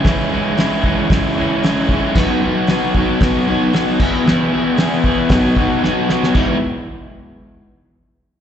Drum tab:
CC |----------------|x-------------x-|----------------|x---------------|
HH |o---o---o---o---|----o---o---o---|----o---o-------|----------------|
SD |o---o---o---o---|o---o---o---o---|o---o---o---o-oo|----------------|
BD |o-----o-o-----o-|o-----o-o-----o-|------o-o-o-----|o---------------|